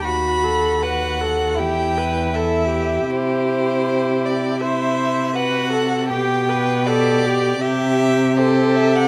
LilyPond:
<<
  \new Staff \with { instrumentName = "Violin" } { \time 4/4 \key c \lydian \tempo 4 = 79 b''4 fis''4 g''4 e''4 | c''4. d''8 e''4 fis''4 | g''4 d''4 e''4 c''8 e''16 fis''16 | }
  \new Staff \with { instrumentName = "Viola" } { \time 4/4 \key c \lydian fis'8 a'8 b'8 a'8 g'8 b'8 a'8 g'8~ | g'2 c''4 b'8 a'8 | g'8 b'8 a'8 g'8 g'4 a'4 | }
  \new Staff \with { instrumentName = "Violin" } { \time 4/4 \key c \lydian fis'4 fis'4 e'4 e'4 | e'2 e'4 fis'4 | g'4 g'4 g'4 g'4 | }
  \new Staff \with { instrumentName = "Cello" } { \clef bass \time 4/4 \key c \lydian dis,2 e,2 | c1 | b,2 c2 | }
>>